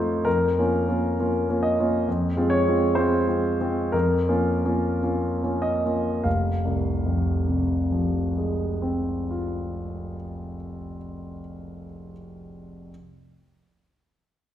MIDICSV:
0, 0, Header, 1, 2, 480
1, 0, Start_track
1, 0, Key_signature, -4, "minor"
1, 0, Tempo, 904977
1, 137, Time_signature, 2, 2, 24, 8
1, 1576, Tempo, 967742
1, 2056, Tempo, 1088929
1, 2536, Tempo, 1229508
1, 3016, Tempo, 1094891
1, 4456, Tempo, 1132075
1, 6578, End_track
2, 0, Start_track
2, 0, Title_t, "Grand piano"
2, 0, Program_c, 0, 0
2, 0, Control_c, 0, 64, 127
2, 0, Note_on_c, 0, 41, 40
2, 0, Note_on_c, 0, 57, 27
2, 0, Note_on_c, 0, 63, 30
2, 0, Note_on_c, 0, 65, 31
2, 0, Note_on_c, 0, 72, 48
2, 0, Note_on_c, 0, 73, 55
2, 123, Note_off_c, 0, 57, 0
2, 123, Note_off_c, 0, 63, 0
2, 125, Note_off_c, 0, 65, 0
2, 131, Note_on_c, 0, 70, 58
2, 136, Note_off_c, 0, 72, 0
2, 137, Note_off_c, 0, 41, 0
2, 137, Note_on_c, 0, 41, 38
2, 145, Control_c, 0, 64, 0
2, 149, Note_off_c, 0, 73, 0
2, 244, Control_c, 0, 64, 127
2, 295, Note_off_c, 0, 41, 0
2, 309, Note_on_c, 0, 58, 29
2, 313, Note_on_c, 0, 61, 30
2, 314, Note_on_c, 0, 65, 31
2, 454, Note_off_c, 0, 58, 0
2, 456, Note_off_c, 0, 61, 0
2, 456, Note_off_c, 0, 65, 0
2, 467, Note_on_c, 0, 58, 28
2, 469, Note_on_c, 0, 61, 29
2, 472, Note_on_c, 0, 65, 30
2, 613, Note_off_c, 0, 58, 0
2, 614, Note_off_c, 0, 61, 0
2, 616, Note_off_c, 0, 65, 0
2, 636, Note_on_c, 0, 58, 29
2, 639, Note_on_c, 0, 61, 30
2, 639, Note_on_c, 0, 65, 32
2, 776, Note_off_c, 0, 58, 0
2, 778, Note_off_c, 0, 61, 0
2, 778, Note_off_c, 0, 65, 0
2, 791, Note_on_c, 0, 58, 29
2, 795, Note_on_c, 0, 61, 28
2, 795, Note_on_c, 0, 65, 31
2, 862, Note_off_c, 0, 70, 0
2, 863, Note_on_c, 0, 75, 51
2, 929, Note_off_c, 0, 58, 0
2, 931, Note_off_c, 0, 61, 0
2, 931, Note_off_c, 0, 65, 0
2, 954, Note_on_c, 0, 61, 30
2, 955, Note_on_c, 0, 58, 31
2, 955, Note_on_c, 0, 65, 33
2, 1088, Note_off_c, 0, 58, 0
2, 1088, Note_off_c, 0, 61, 0
2, 1088, Note_off_c, 0, 65, 0
2, 1095, Note_off_c, 0, 75, 0
2, 1104, Note_on_c, 0, 41, 40
2, 1106, Control_c, 0, 64, 0
2, 1207, Control_c, 0, 64, 127
2, 1252, Note_off_c, 0, 41, 0
2, 1255, Note_on_c, 0, 56, 31
2, 1259, Note_on_c, 0, 60, 31
2, 1259, Note_on_c, 0, 65, 36
2, 1325, Note_on_c, 0, 73, 61
2, 1397, Note_off_c, 0, 56, 0
2, 1399, Note_off_c, 0, 60, 0
2, 1399, Note_off_c, 0, 65, 0
2, 1417, Note_on_c, 0, 60, 31
2, 1418, Note_on_c, 0, 56, 31
2, 1424, Note_on_c, 0, 65, 35
2, 1561, Note_off_c, 0, 56, 0
2, 1561, Note_off_c, 0, 60, 0
2, 1565, Note_off_c, 0, 65, 0
2, 1566, Note_on_c, 0, 72, 51
2, 1571, Note_off_c, 0, 73, 0
2, 1572, Note_on_c, 0, 56, 34
2, 1573, Note_on_c, 0, 60, 34
2, 1576, Note_on_c, 0, 65, 33
2, 1713, Note_off_c, 0, 56, 0
2, 1714, Note_off_c, 0, 60, 0
2, 1715, Note_off_c, 0, 65, 0
2, 1727, Note_on_c, 0, 56, 29
2, 1729, Note_on_c, 0, 60, 29
2, 1731, Note_on_c, 0, 65, 33
2, 1872, Note_off_c, 0, 56, 0
2, 1873, Note_off_c, 0, 60, 0
2, 1874, Note_off_c, 0, 65, 0
2, 1890, Note_on_c, 0, 56, 31
2, 1893, Note_on_c, 0, 60, 30
2, 1897, Note_on_c, 0, 65, 32
2, 2038, Note_off_c, 0, 56, 0
2, 2040, Note_off_c, 0, 60, 0
2, 2042, Note_off_c, 0, 65, 0
2, 2048, Note_on_c, 0, 70, 59
2, 2050, Note_off_c, 0, 72, 0
2, 2054, Note_on_c, 0, 41, 42
2, 2062, Control_c, 0, 64, 0
2, 2154, Control_c, 0, 64, 127
2, 2203, Note_off_c, 0, 41, 0
2, 2208, Note_on_c, 0, 58, 32
2, 2210, Note_on_c, 0, 61, 32
2, 2212, Note_on_c, 0, 65, 34
2, 2352, Note_off_c, 0, 58, 0
2, 2353, Note_off_c, 0, 61, 0
2, 2354, Note_off_c, 0, 65, 0
2, 2371, Note_on_c, 0, 58, 31
2, 2371, Note_on_c, 0, 61, 30
2, 2373, Note_on_c, 0, 65, 33
2, 2520, Note_off_c, 0, 58, 0
2, 2520, Note_off_c, 0, 61, 0
2, 2521, Note_off_c, 0, 65, 0
2, 2537, Note_on_c, 0, 58, 26
2, 2537, Note_on_c, 0, 61, 26
2, 2540, Note_on_c, 0, 65, 30
2, 2678, Note_off_c, 0, 58, 0
2, 2678, Note_off_c, 0, 61, 0
2, 2680, Note_off_c, 0, 65, 0
2, 2693, Note_on_c, 0, 58, 24
2, 2696, Note_on_c, 0, 65, 26
2, 2697, Note_on_c, 0, 61, 26
2, 2766, Note_on_c, 0, 75, 45
2, 2774, Note_off_c, 0, 70, 0
2, 2845, Note_off_c, 0, 58, 0
2, 2846, Note_off_c, 0, 61, 0
2, 2846, Note_off_c, 0, 65, 0
2, 2858, Note_on_c, 0, 58, 23
2, 2859, Note_on_c, 0, 61, 22
2, 2863, Note_on_c, 0, 65, 27
2, 2998, Note_off_c, 0, 58, 0
2, 2998, Note_off_c, 0, 61, 0
2, 3001, Note_off_c, 0, 65, 0
2, 3008, Note_on_c, 0, 77, 33
2, 3010, Note_off_c, 0, 75, 0
2, 3012, Note_on_c, 0, 29, 31
2, 3023, Control_c, 0, 64, 0
2, 3120, Control_c, 0, 64, 127
2, 3187, Note_on_c, 0, 36, 29
2, 3367, Note_on_c, 0, 41, 26
2, 3550, Note_on_c, 0, 48, 25
2, 3745, Note_on_c, 0, 53, 24
2, 3942, Note_on_c, 0, 56, 26
2, 4139, Note_on_c, 0, 60, 23
2, 4353, Note_on_c, 0, 65, 22
2, 4715, Note_off_c, 0, 77, 0
2, 4720, Note_off_c, 0, 29, 0
2, 4890, Note_off_c, 0, 36, 0
2, 5064, Note_off_c, 0, 41, 0
2, 5240, Note_off_c, 0, 48, 0
2, 5429, Note_off_c, 0, 53, 0
2, 5550, Note_off_c, 0, 60, 0
2, 5550, Note_off_c, 0, 65, 0
2, 5552, Note_off_c, 0, 56, 0
2, 5882, Control_c, 0, 64, 0
2, 6578, End_track
0, 0, End_of_file